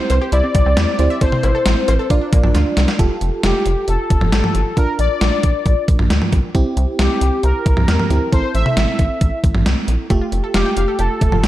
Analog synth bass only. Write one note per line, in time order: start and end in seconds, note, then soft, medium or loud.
0.10 0.19 C2 loud
0.32 0.41 C2 loud
0.55 0.64 C2 loud
0.66 0.75 C2 loud
0.77 0.86 E2 loud
0.99 1.08 D2 medium
1.21 1.30 A1 loud
1.44 1.53 A1 loud
1.66 1.75 A1 loud
1.88 1.97 A1 loud
2.10 2.19 A#1 loud
2.33 2.42 A#1 loud
2.44 2.53 A#1 loud
2.55 2.64 D2 loud
2.77 2.86 C2 medium
2.99 3.08 F1 loud
3.21 3.30 F1 medium
3.44 3.53 F1 loud
3.66 3.75 F1 loud
3.88 3.97 F1 loud
4.10 4.19 F1 loud
4.21 4.30 F1 loud
4.33 4.42 A1 medium
4.55 4.64 G1 medium
4.77 4.86 A#1 loud
4.99 5.08 A#1 loud
5.21 5.30 A#1 loud
5.44 5.53 A#1 loud
5.66 5.75 A#1 loud
5.88 5.97 A#1 loud
5.99 6.08 A#1 loud
6.10 6.19 D2 loud
6.33 6.42 C2 medium
6.55 6.64 C2 loud
6.77 6.86 C2 loud
6.99 7.08 C2 loud
7.21 7.30 C2 medium
7.43 7.53 C2 loud
7.66 7.75 C2 loud
7.77 7.86 C2 medium
7.88 7.97 E2 medium
8.10 8.19 D2 medium
8.33 8.42 A1 loud
8.55 8.64 A1 loud
8.77 8.86 A1 loud
8.99 9.08 A1 loud
9.21 9.30 A1 loud
9.44 9.53 A1 loud
9.55 9.64 A1 medium
9.66 9.75 C2 loud
9.88 9.97 A#1 medium
10.10 10.19 F1 loud
10.32 10.41 F1 loud
10.54 10.64 F1 loud
10.77 10.86 F1 loud
10.99 11.08 F1 loud
11.21 11.30 F1 loud
11.32 11.41 F1 loud
11.43 11.48 A1 loud